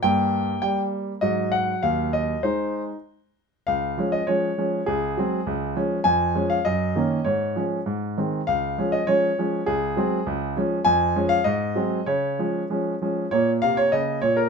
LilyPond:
<<
  \new Staff \with { instrumentName = "Grand piano" } { \time 2/4 \key des \major \tempo 4 = 100 g''4 g''8 r8 | ees''8 ges''8 f''8 ees''8 | c''4 r4 | f''8. ees''16 des''4 |
aes'4. r8 | aes''8. f''16 ees''4 | des''4 r4 | f''8. ees''16 des''4 |
aes'4. r8 | aes''8. f''16 ees''4 | des''4. r8 | \key bes \minor des''8 f''16 des''16 ees''8 des''16 bes'16 | }
  \new Staff \with { instrumentName = "Grand piano" } { \clef bass \time 2/4 \key des \major << { bes2 | ges2 | r2 | r2 |
r2 | r2 | r2 | r2 |
r2 | r2 | r2 | \key bes \minor bes2 | } \\ { g,4 g4 | aes,4 ees,4 | <aes ees'>4 r4 | des,8 <f aes des'>8 <f aes des'>8 <f aes des'>8 |
des,8 <ges aes c'>8 des,8 <f aes des'>8 | f,8 <f aes des'>8 ges,8 <ees bes des'>8 | aes,8 <f aes des'>8 aes,8 <ees aes c'>8 | des,8 <f aes des'>8 <f aes des'>8 <f aes des'>8 |
des,8 <ges aes c'>8 des,8 <f aes des'>8 | f,8 <f aes des'>8 aes,8 <ges aes c'>8 | des8 <f aes des'>8 <f aes des'>8 <f aes des'>8 | bes,8 c8 des8 bes,8 | } >> }
>>